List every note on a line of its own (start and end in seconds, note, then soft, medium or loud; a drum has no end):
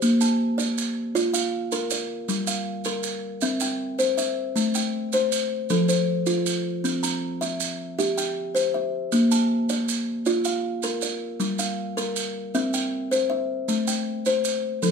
0.02 0.40 A#3 medium
0.02 maracas medium
0.21 0.77 A5 medium
0.21 maracas medium
0.58 0.96 D5 medium
0.58 maracas medium
0.78 maracas medium
1.15 1.53 F4 medium
1.15 1.72 D5 medium
1.15 maracas medium
1.33 1.90 F5 medium
1.33 maracas medium
1.72 2.10 A#4 medium
1.72 maracas medium
1.90 2.48 D5 medium
1.90 maracas medium
2.29 2.66 G3 medium
2.29 maracas medium
2.47 3.04 F5 medium
2.47 maracas medium
2.85 3.42 A#4 medium
2.85 maracas medium
3.03 maracas medium
3.41 3.80 C4 medium
3.41 3.99 E5 medium
3.41 maracas medium
3.60 4.18 G5 medium
3.60 maracas medium
3.99 4.37 C5 medium
3.99 maracas medium
4.17 4.74 E5 medium
4.17 maracas medium
4.56 4.94 A3 medium
4.56 maracas medium
4.74 5.32 G5 medium
4.74 maracas medium
5.12 5.51 C5 medium
5.12 maracas medium
5.32 maracas medium
5.70 6.08 F3 medium
5.70 6.27 A4 medium
5.70 maracas medium
5.89 6.46 C5 medium
5.89 maracas medium
6.26 6.65 F4 medium
6.26 maracas medium
6.46 maracas medium
6.84 7.22 C4 medium
6.84 maracas medium
7.03 7.60 A#5 medium
7.03 maracas medium
7.41 7.97 E5 medium
7.41 maracas medium
7.60 maracas medium
7.99 8.36 G4 medium
7.99 8.55 E5 medium
7.99 maracas medium
8.18 8.74 G5 medium
8.18 maracas medium
8.55 8.93 C5 medium
8.55 maracas medium
8.74 9.31 E5 medium
9.12 9.50 A#3 medium
9.12 maracas medium
9.31 9.88 A5 medium
9.31 maracas medium
9.69 10.25 D5 medium
9.69 maracas medium
9.88 maracas medium
10.26 10.64 F4 medium
10.26 10.83 D5 medium
10.26 maracas medium
10.45 11.02 F5 medium
10.45 maracas medium
10.83 11.21 A#4 medium
10.83 maracas medium
11.02 11.59 D5 medium
11.02 maracas medium
11.40 11.78 G3 medium
11.40 maracas medium
11.59 12.16 F5 medium
11.59 maracas medium
11.97 12.35 A#4 medium
11.97 maracas medium
12.16 maracas medium
12.55 12.93 C4 medium
12.55 13.12 E5 medium
12.55 maracas medium
12.74 13.31 G5 medium
12.74 maracas medium
13.11 13.49 C5 medium
13.11 maracas medium
13.30 13.87 E5 medium
13.68 14.06 A3 medium
13.68 maracas medium
13.87 14.45 G5 medium
13.87 maracas medium
14.26 14.64 C5 medium
14.26 maracas medium
14.44 maracas medium
14.83 14.91 F3 medium
14.83 14.91 A4 medium
14.83 maracas medium